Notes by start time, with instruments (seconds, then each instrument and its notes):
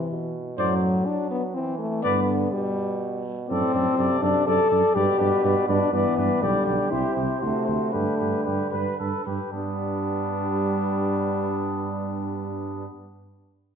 Already playing: french horn E3
0.10 trombone B2
0.57 tuba F#2, trombone A2, french horn F#3, trumpet C5 D5
1.06 trombone F#3, french horn D4
1.31 french horn B3
1.54 trombone E3, french horn C4
1.79 french horn A3
2.03 tuba G2, trombone D3, french horn B3, trumpet B4 D5
2.52 trombone B2, french horn G3
3.48 tuba F#2, trombone A2, french horn C4, trumpet A4 D5
3.74 tuba F#2, trumpet A4 D5
3.98 tuba F#2, trombone C3, trumpet A4 D5
4.22 tuba F#2, french horn D4, trumpet A4 D5
4.46 tuba F#2, trumpet A4 D5, french horn A4
4.70 tuba F#2, trumpet A4 D5
4.95 tuba G2, trombone B2, french horn G4, trumpet B4 D5
5.19 tuba G2, trumpet B4 D5
5.44 tuba G2, trumpet B4 D5
5.68 tuba G2, french horn D4, trumpet B4 D5
5.92 tuba G2, trombone E3, french horn B3, trumpet B4 D5
6.17 tuba G2, trumpet B4 D5
6.42 tuba B1, trombone D3, french horn G3, trumpet G4 D5
6.66 tuba B1, trumpet G4 D5
6.91 tuba C2, trombone C3, french horn E4, trumpet G4 C5
7.14 tuba C2, trumpet G4 C5
7.40 tuba D2, french horn A3, trumpet F#4 C5
7.65 tuba D2, trumpet F#4 C5
7.91 tuba G2, trombone D3, french horn A3, trumpet G4 B4
8.18 tuba G2, trumpet G4 B4
8.45 tuba G2, french horn G3, trumpet G4 B4
8.71 tuba G2, trumpet B4
8.98 tuba G2, trumpet A4 B4
9.25 tuba G2, trumpet G4 B4
9.52 tuba G2, french horn G3, trombone G3, trumpet B3 D4